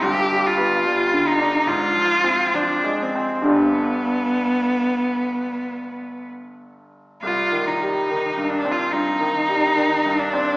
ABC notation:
X:1
M:4/4
L:1/16
Q:1/4=69
K:Cm
V:1 name="Cello"
G2 F4 E2 F4 D2 C2 | =B,12 z4 | F2 E4 D F E6 D2 |]
V:2 name="Grand piano" clef=bass
(3[G,,,G,,]2 G,2 =B,2 (3G,2 D,2 D2 (3A,,2 F,2 C2 (3F,2 A,2 C2 | [G,,,G,,D,G,D]16 | (3C,,2 E,2 G,2 (3E,2 G,,2 C2 (3G,,2 E,2 G,2 (3E,2 G,,2 C2 |]